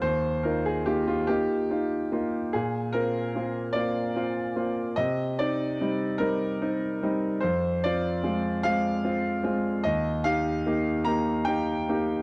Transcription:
\new Staff \with { instrumentName = "Grand piano" } { \time 6/8 \key ees \major \tempo 4. = 49 << { c''8 bes'16 aes'16 g'16 f'16 g'4. | aes'8 bes'4 d''4. | ees''8 d''4 bes'4. | c''8 d''4 f''4. |
ees''8 f''4 bes''8 g''4 | } \\ { ees,8 <ees' f'>8 <bes ees' f'>8 <bes ees' f'>8 <ees' f'>8 <bes ees' f'>8 | bes,8 <c' f'>8 <bes c' f'>8 <bes c' f'>8 <c' f'>8 <bes c' f'>8 | c8 <c' ees'>8 <g c' ees'>8 <g c' ees'>8 <c' ees'>8 <g c' ees'>8 | f,8 <c' f'>8 <aes c' f'>8 <aes c' f'>8 <c' f'>8 <aes c' f'>8 |
ees,8 <ees' g'>8 <bes ees' g'>8 <bes ees' g'>8 <ees' g'>8 <bes ees' g'>8 | } >> }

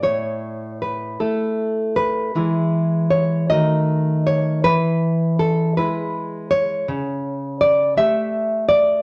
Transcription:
\new Staff \with { instrumentName = "Nylon-string guitar" } { \time 6/8 \key e \mixolydian \tempo 4. = 53 << { cis''4 b'8 a'4 b'8~ | b'4 cis''8 dis''4 cis''8 | b'4 a'8 b'4 cis''8~ | \key a \phrygian cis''4 d''8 e''4 d''8 | } \\ { a,4. <a e'>4. | <e gis e'>4. <dis a fis'>4. | e4. <gis e'>4. | cis4. <a g'>4. | } >> }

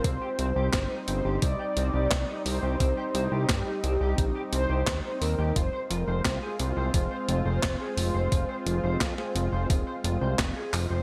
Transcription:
<<
  \new Staff \with { instrumentName = "Analog polysynth" } { \time 4/4 \key c \minor \tempo 4 = 87 c''4. c''8 d''4. c''8 | c''4 g'4. c''4 bes'8 | c''8 bes'8 c''8 c''2~ c''8~ | c''2. r4 | }
  \new Staff \with { instrumentName = "Clean electric guitar" } { \time 4/4 \key c \minor c'16 g'16 c'16 g'16 c'16 ees'16 c'16 g'16 c'16 g'16 c'16 g'16 c'16 ees'16 c'16 g'16 | c'16 g'16 c'16 g'16 c'16 ees'16 c'16 g'16 c'16 g'16 c'16 g'16 c'16 ees'16 c'16 g'16 | f'16 c''16 f'16 c''16 f'16 aes'16 f'16 c''16 f'16 c''16 f'16 c''16 f'16 aes'16 f'16 c''16 | f'16 c''16 f'16 c''16 f'16 aes'16 f'16 c''16 f'16 c''16 f'16 c''16 f'16 aes'16 f'16 c''16 | }
  \new Staff \with { instrumentName = "Analog synth pad" } { \time 4/4 \key c \minor <g c' ees'>1~ | <g c' ees'>1 | <aes c' f'>1~ | <aes c' f'>1 | }
  \new Staff \with { instrumentName = "Analog synth bass" } { \clef bass \time 4/4 \key c \minor c,16 r16 c,16 c,16 g,,16 r16 g,,16 g,,16 c,16 r16 c,16 c,16 c,16 r16 c,16 c,16 | c,16 r16 c,16 c,16 g,,16 r16 c,16 c,16 bes,,16 r16 c,16 c,16 ees,16 r16 ees,16 ees,16 | f,,16 r16 f,,16 f,,16 c,16 r16 c,16 c,16 f,,16 r16 f,,16 f,,16 f,,16 r16 f,,16 f,,16 | f,,16 r16 f,,16 f,,16 f,16 r16 f,,16 f,,16 ees,,16 r16 f,,16 c,16 f,,16 r16 f,,16 f,,16 | }
  \new DrumStaff \with { instrumentName = "Drums" } \drummode { \time 4/4 <hh bd>8 hh8 <hc hh bd sn>8 hh8 <hh bd>8 hh8 <hc hh bd sn>8 hho8 | <hh bd>8 hh8 <hc hh bd sn>8 hh8 <hh bd>8 hh8 <hc hh bd sn>8 hho8 | <hh bd>8 hh8 <hc hh bd sn>8 hh8 <hh bd>8 hh8 <hc hh bd sn>8 hho8 | <hh bd>8 hh8 <hc hh bd sn>16 sn16 hh8 <hh bd>8 hh8 <hc hh bd sn>8 <hc hho>8 | }
>>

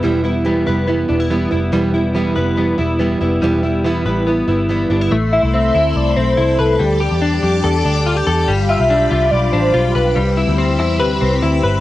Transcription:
<<
  \new Staff \with { instrumentName = "String machine" } { \time 4/4 \key a \minor \tempo 4 = 142 << { r1 | r1 | r1 | <e'' b'' c'''>1 |
<d'' a'' d'''>1 | <f' b'' d'''>1 | <c' b'' e'''>1 | } \\ { r1 | r1 | r1 | a'1 |
g'1~ | g'1 | g'1 | } >> }
  \new Staff \with { instrumentName = "Soft synth lead" } { \time 4/4 \key a \minor r1 | r1 | r1 | r8 e''8 e''4 d''8 c''4 a'8~ |
a'8 r2. r8 | r8 e''8 e''4 d''8 c''4 b'8~ | b'8 r2. r8 | }
  \new Staff \with { instrumentName = "Clean electric guitar" } { \time 4/4 \key a \minor <g b e' b'>8 e'8 b8 b'8 b8 d'16 e'16 b8 e'8 | g8 e'8 b8 b'8 b8 e'8 b8 e'8 | g8 e'8 b8 b'8 b8 e'8 b8 d'16 e'16 | a8 e'8 c'8 e'4 c'8 e'8 b'8 |
g8 g'8 d'8 g'8 a'8 d'8 f'16 g'16 a'8 | g8 f'8 d'8 f'4 d'8 f'8 b'8 | g8 e'8 c'8 e'8 b'8 c'8 e'8 b'8 | }
  \new Staff \with { instrumentName = "Steel-string acoustic guitar" } { \time 4/4 \key a \minor <e g b e'>8 <g b e'>8 <e g b e'>8 <g b e'>8 <e g b e'>8 <g b e'>8 <e g b e'>8 <g b e'>8 | <e g b e'>8 <g b e'>8 <e g b e'>8 <g b e'>8 <e g b e'>8 <g b e'>8 <e g b e'>8 <g b e'>8 | <e g b e'>8 <g b e'>8 <e g b e'>8 <g b e'>8 <e g b e'>8 <g b e'>8 <e g b e'>8 <g b e'>8 | r1 |
r1 | r1 | r1 | }
  \new Staff \with { instrumentName = "Picked electric bass" } { \clef bass \time 4/4 \key a \minor e,,4. f,,4 e,,4 f,,8 | e,,4. f,,4 e,,4 f,,8 | e,,4. a,,4 g,,4 g,,8 | a,,8. c,8. d,8 c,8 b,,8 c,8 c,8 |
d,8. e,8. f,8 e,8 d,4 e,8 | g,,8. b,,8. c,8 b,,8 a,,8 b,,8 b,,8 | c,8. d,8. e,8 d,8 c,8 d,8 g,,8 | }
>>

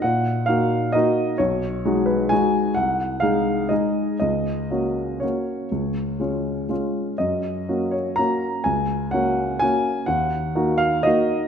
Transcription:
\new Staff \with { instrumentName = "Grand piano" } { \time 3/4 \key fis \major \tempo 4 = 124 << { fis''4 eis''4 dis''4 | cis''4. b'8 gis''4 | fis''4 eis''4 dis''4 | dis''2 cis''4~ |
cis''2 r4 | dis''4. cis''8 ais''4 | gis''4 fis''4 gis''4 | fis''4. eis''8 dis''4 | } \\ { ais,4 <ais dis' fis'>4 <ais dis' fis'>4 | b,,4 <gis dis' fis'>4 <gis dis' fis'>4 | bis,,4 <gis dis' gis'>4 <gis dis' gis'>4 | cis,4 <ais cis' fis'>4 <ais cis' fis'>4 |
cis,4 <gis cis' eis'>4 <gis cis' eis'>4 | fis,4 <ais cis' fis'>4 <ais cis' fis'>4 | cis,4 <ais cis' fis'>4 <ais cis' fis'>4 | dis,4 <ais dis' fis'>4 <ais dis' fis'>4 | } >> }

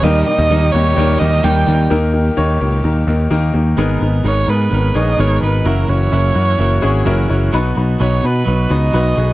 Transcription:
<<
  \new Staff \with { instrumentName = "Erhu" } { \time 4/4 \key dis \phrygian \tempo 4 = 128 dis''8 dis''4 cis''4 dis''8 g''8. r16 | r1 | \key gis \minor r4 cis''8 b'4 dis''8 cis''8 b'8 | ais'8 cis''2. r8 |
r4 cis''8 b'4 dis''4. | }
  \new Staff \with { instrumentName = "Grand piano" } { \time 4/4 \key dis \phrygian <g ais dis' g' ais'>8 <g ais dis' g' ais'>8 <g ais dis' g' ais'>8 <g ais dis' g' cis''>8 <g ais dis' g' ais'>8 <g ais dis' g' ais'>8 <g ais dis' g' ais'>8 <g ais dis' g' ais'>8 | <ais dis' g' ais'>8 <ais dis' g' ais'>8 <ais dis' g' cis''>8 <ais dis' g' ais'>8 <ais dis' g' ais'>8 <ais dis' g' ais'>8 <ais dis' g' ais'>8 <ais dis' g' ais'>8 | \key gis \minor <b dis' gis' ais'>8 <b dis' gis' ais'>8 <b dis' gis' ais'>8 <b dis' gis' ais'>8 <b dis' gis' ais'>8 <b dis' gis' cis''>8 <b dis' gis' ais'>8 <b dis' gis' ais'>8 | <cis' e' fis' ais'>8 <cis' e' fis' ais'>8 <cis' e' fis' ais'>8 <cis' e' fis' ais'>8 <cis' e' fis' ais'>8 <cis' e' fis' gis'>8 <cis' e' fis' ais'>8 <cis' e' fis' cis''>8 |
<b dis' fis' b'>8 <b dis' fis' b'>8 <b dis' fis' b'>8 <b dis' fis' b'>8 <b dis' fis' b'>8 <b dis' fis' b'>8 <b dis' fis' b'>8 <b dis' fis' gis'>8 | }
  \new Staff \with { instrumentName = "Grand piano" } { \clef bass \time 4/4 \key dis \phrygian dis4. r2 r8 | dis4. r2 r8 | \key gis \minor gis,4. r2 r8 | r1 |
b,4. r2 r8 | }
  \new Staff \with { instrumentName = "Clean electric guitar" } { \time 4/4 \key dis \phrygian <dis g ais dis' g'>8 <ais dis' g'>8 <dis g ais dis' g'>8 <ais dis' g'>8 <g ais dis' g'>8 <ais dis' g'>8 <dis g ais dis' g'>8 <ais dis' g'>8 | r1 | \key gis \minor <gis, dis gis b dis' ais'>8 <gis b dis' ais'>8 <gis, dis gis b dis' ais'>8 <gis b dis' ais'>8 <gis b dis' ais'>8 <gis b dis' ais'>8 <gis, dis gis b dis' ais'>8 <gis b dis' ais'>8 | <fis, cis e ais e' fis'>8 <e ais e' fis'>8 <fis, cis e ais e' fis'>8 <e ais e' fis'>8 <e ais e' fis'>8 <e ais e' fis'>8 <fis, cis e ais e' fis'>8 <e ais e' fis'>8 |
<b, fis b dis' fis'>8 <b dis' fis'>8 <b, fis b dis' fis'>8 <b dis' fis'>8 <fis b dis' fis'>8 <b dis' fis'>8 <b, fis b dis' fis'>8 <b dis' fis'>8 | }
  \new Staff \with { instrumentName = "String section" } { \clef bass \time 4/4 \key dis \phrygian <ais, dis g dis' g'>1 | <ais, dis g dis' g'>1 | \key gis \minor r1 | r1 |
r1 | }
  \new Staff \with { instrumentName = "Picked electric bass" } { \clef bass \time 4/4 \key dis \phrygian dis,8 r16 dis,16 dis,8 dis,8 dis,8 dis,8 dis,8 dis,8 | dis,4 dis,8 cis,8 dis,8 dis,8 dis,8 dis,8 | \key gis \minor gis,,8 gis,,8 gis,,8 gis,8 gis,,8 ais,,8 gis,,8 gis,,8 | fis,,8 fis,,8 fis,,8 fis,8 fis,,8 gis,,8 fis,,8 fis,,8 |
b,,8 b,,8 b,,8 b,8 b,,8 cis,8 b,,8 b,,8 | }
>>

